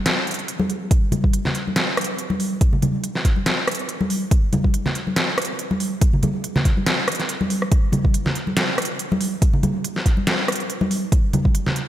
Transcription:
0.06 snare, closed hi-hat
0.27 closed hi-hat
0.31 closed hi-hat
0.34 closed hi-hat
0.39 closed hi-hat
0.48 closed hi-hat
0.60 high conga
0.70 closed hi-hat
0.91 kick, closed hi-hat
1.12 closed hi-hat, high conga, low conga
1.24 kick
1.33 closed hi-hat
1.45 snare, low conga
1.55 closed hi-hat
1.68 high conga
1.76 snare, closed hi-hat
1.97 cross-stick, closed hi-hat
2.01 closed hi-hat
2.04 closed hi-hat
2.18 closed hi-hat
2.30 high conga
2.40 open hi-hat
2.61 kick, closed hi-hat
2.73 low conga
2.82 closed hi-hat, high conga, low conga
3.04 closed hi-hat
3.15 snare
3.25 kick, closed hi-hat
3.36 high conga
3.46 snare, closed hi-hat
3.68 cross-stick, closed hi-hat
3.71 closed hi-hat
3.75 closed hi-hat
3.79 closed hi-hat
3.89 closed hi-hat
4.01 high conga
4.10 open hi-hat
4.31 kick, closed hi-hat
4.53 closed hi-hat, high conga, low conga
4.64 kick
4.74 closed hi-hat
4.86 snare, low conga
4.95 closed hi-hat
5.07 high conga
5.16 snare, closed hi-hat
5.38 cross-stick, closed hi-hat
5.42 closed hi-hat
5.45 closed hi-hat
5.59 closed hi-hat
5.71 high conga
5.80 open hi-hat
6.01 kick, closed hi-hat
6.13 low conga
6.23 closed hi-hat, high conga, low conga
6.44 closed hi-hat
6.56 snare, low conga
6.65 kick, closed hi-hat
6.77 high conga
6.86 snare, closed hi-hat
7.08 cross-stick, closed hi-hat
7.12 closed hi-hat
7.15 closed hi-hat
7.20 snare, closed hi-hat
7.29 closed hi-hat
7.41 high conga
7.50 open hi-hat
7.62 cross-stick
7.72 kick, closed hi-hat
7.92 closed hi-hat, high conga, low conga
8.05 kick
8.14 closed hi-hat
8.26 snare, low conga
8.35 closed hi-hat
8.47 high conga
8.57 snare, closed hi-hat
8.78 cross-stick, closed hi-hat
8.82 closed hi-hat
8.85 closed hi-hat
8.99 closed hi-hat
9.12 high conga
9.21 open hi-hat
9.42 kick, closed hi-hat
9.53 low conga
9.63 closed hi-hat, high conga, low conga
9.84 closed hi-hat
9.96 snare
10.06 kick, closed hi-hat
10.17 high conga
10.27 snare, closed hi-hat
10.48 cross-stick, closed hi-hat
10.52 closed hi-hat
10.55 closed hi-hat
10.60 closed hi-hat
10.70 closed hi-hat
10.81 high conga
10.91 open hi-hat
11.12 kick, closed hi-hat
11.33 closed hi-hat, high conga, low conga
11.45 kick
11.55 closed hi-hat
11.66 snare, low conga
11.76 closed hi-hat

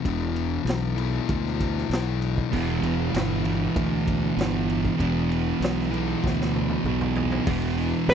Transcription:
0.03 E1 E2 B2, kick, ride
0.08 E3
0.36 ride
0.65 B1, ride
0.69 snare
0.96 E2 B2 E3, ride
1.29 D2, kick, ride
1.47 snare
1.60 kick, ride
1.78 snare
1.90 B1, snare, ride
2.22 ride
2.38 kick
2.51 E1 E2 B2, kick, crash
2.55 E3
2.83 E1, ride
3.14 G1, snare, ride
3.44 E2 B2 E3, ride
3.76 D2, kick, ride
4.07 kick, ride
4.36 G1 E2 B2 E3, ride
4.40 snare
4.69 ride
4.85 kick
4.97 E1 E2 B2, kick, ride
5.01 E3
5.31 ride
5.60 B1, snare, ride
5.80 snare
5.91 B2 E3, ride
5.95 E2
6.24 D2, kick, snare
6.41 snare
6.55 high tom
6.69 high tom
6.84 B1 E2 B2 E3, mid tom
7.01 mid tom
7.16 floor tom
7.32 floor tom
7.46 E1 E2 B2 E3, kick, crash
7.78 open hi-hat
8.08 A1 B4, snare, open hi-hat

